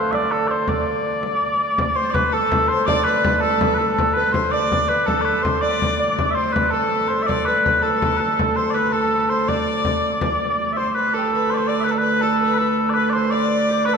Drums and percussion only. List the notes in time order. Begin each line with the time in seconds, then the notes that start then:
0.13 frame drum
0.68 frame drum
0.86 frame drum
1.04 frame drum
1.23 frame drum
1.41 frame drum
1.78 frame drum
2.14 frame drum
2.34 frame drum
2.52 frame drum
2.70 frame drum
2.88 frame drum
3.25 frame drum
3.43 frame drum
3.61 frame drum
3.80 frame drum
3.98 frame drum
4.34 frame drum
4.53 frame drum
4.72 frame drum
4.90 frame drum
5.08 frame drum
5.28 frame drum
5.45 frame drum
5.64 frame drum
5.82 frame drum
6.19 frame drum
6.56 frame drum
6.74 frame drum
7.11 frame drum
7.29 frame drum
7.66 frame drum
7.85 frame drum
8.02 frame drum
8.21 frame drum
8.39 frame drum
8.94 frame drum
9.31 frame drum
9.49 frame drum
9.85 frame drum
10.02 frame drum
10.21 frame drum
10.40 frame drum